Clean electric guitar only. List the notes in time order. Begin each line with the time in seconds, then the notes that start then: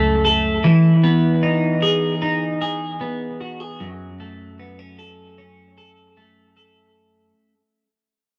Already playing: F#2 A3 C#4 A4
0.25 A4
0.64 E3
1.04 B3
1.43 D#4
1.82 G#4
2.22 D#4
2.61 G#4
3.01 B3
3.41 F#4
3.60 G#4
3.80 F#2
4.20 A3
4.59 B3
4.79 C#4
4.99 A4
5.38 C#4
5.78 A4
6.17 A3
6.57 A4